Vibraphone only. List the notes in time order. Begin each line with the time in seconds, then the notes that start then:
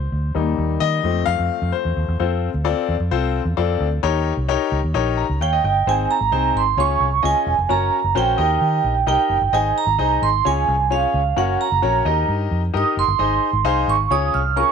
5.42 G5
5.89 G#5
6.11 A#5
6.57 C6
6.80 C#6
7.25 G#5
7.71 A#5
8.18 G5
9.08 G5
9.55 G#5
9.78 A#5
10.23 C6
10.47 G#5
10.92 F5
11.38 F#5
11.61 A#5
12.77 D#6
12.99 C6
13.89 C#6
14.12 D#6
14.34 F6
14.57 C#6